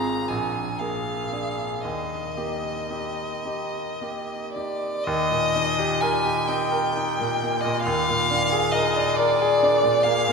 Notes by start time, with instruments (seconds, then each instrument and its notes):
Already playing: grand piano G#1 C4 F4 G#4, violin A#5
0.28 grand piano A#1, violin G#5
0.79 grand piano A#3 G#4, violin F5
1.32 grand piano D4 G#4
1.81 grand piano D#2, violin D#5
2.37 grand piano A#3 G4
2.90 grand piano D#4 G4
3.45 grand piano D#4 G4
4.01 grand piano A#3 G4
4.53 grand piano D#4 G4, violin D5
5.03 grand piano D#2, violin D#5
5.31 grand piano A#2
5.56 grand piano D#4
5.79 grand piano G4
6.01 grand piano A#4, violin G#5
6.25 grand piano G4
6.48 grand piano D#4, violin G5
6.71 grand piano A#4
6.97 grand piano D#4
7.20 grand piano A#2
7.43 grand piano A#3
7.61 grand piano A#2, violin D#5
7.81 violin F5
7.86 grand piano D#2
8.09 grand piano A#2
8.31 grand piano D4
8.52 grand piano G#4
8.72 grand piano A#4, violin D#5
8.96 grand piano D5
9.16 grand piano A#4, violin D5
9.42 grand piano G#4
9.63 grand piano D4
9.83 grand piano A#2
10.03 grand piano A#3, violin F5
10.28 grand piano A#2